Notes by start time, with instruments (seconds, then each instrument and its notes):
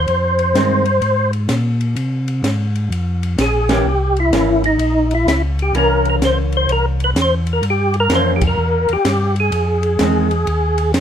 Already playing: tonewheel organ C5
0.08 tonewheel organ F2, ride
0.39 ride
0.54 tonewheel organ G2, hollow-body jazz guitar D#3 G#3 C4, snare, hi-hat pedal, ride
0.85 ride
1.02 tonewheel organ G#2, ride
1.33 ride
1.49 tonewheel organ A#2, snare, hi-hat pedal, ride
1.81 ride
1.96 tonewheel organ C3, ride
2.28 ride
2.43 tonewheel organ G#2, snare, hi-hat pedal, ride
2.75 ride
2.90 tonewheel organ F2, ride
3.23 ride
3.38 tonewheel organ A#1 G#4, snare, hi-hat pedal, ride
3.69 hollow-body jazz guitar E3 A#3 C#4, tonewheel organ G4, snare, ride
3.85 tonewheel organ C2
4.16 tonewheel organ E4, ride
4.31 tonewheel organ G#1, hollow-body jazz guitar E3 A#3 C#4, snare, hi-hat pedal, ride
4.64 tonewheel organ D#4, ride
4.78 tonewheel organ A#1, ride
5.11 tonewheel organ E4, ride
5.26 tonewheel organ C#2 E4, snare, hi-hat pedal, ride
5.59 tonewheel organ G4, ride
5.73 tonewheel organ C2, hollow-body jazz guitar E3 A#3 C#4, ride
5.78 tonewheel organ A#4
6.05 ride
6.10 tonewheel organ A#4
6.20 tonewheel organ C#2, snare, hi-hat pedal, ride
6.25 tonewheel organ C5
6.52 ride
6.57 tonewheel organ C5
6.67 tonewheel organ C2, ride
6.72 tonewheel organ A#4
7.00 ride
7.04 tonewheel organ B4
7.15 tonewheel organ E2, snare, hi-hat pedal, ride
7.22 tonewheel organ C5
7.47 ride
7.53 tonewheel organ A#4
7.62 tonewheel organ G2, ride
7.70 tonewheel organ G4
7.94 ride
8.00 tonewheel organ A#4
8.09 tonewheel organ F2, hollow-body jazz guitar E3 A#3 C#4, snare, hi-hat pedal, ride
8.15 tonewheel organ C5
8.36 tonewheel organ G4
8.41 kick, ride
8.47 tonewheel organ A#4
8.58 tonewheel organ E2
8.89 tonewheel organ E2, ride
8.93 tonewheel organ G4
9.05 tonewheel organ G2, snare, hi-hat pedal, ride
9.36 ride
9.40 tonewheel organ G#4
9.52 tonewheel organ F2, ride
9.83 ride
9.99 tonewheel organ E2, hollow-body jazz guitar D#3 G#3 C4, snare, hi-hat pedal, ride
10.31 ride
10.47 tonewheel organ D#2, ride
10.78 ride
10.93 tonewheel organ F2, snare, hi-hat pedal, ride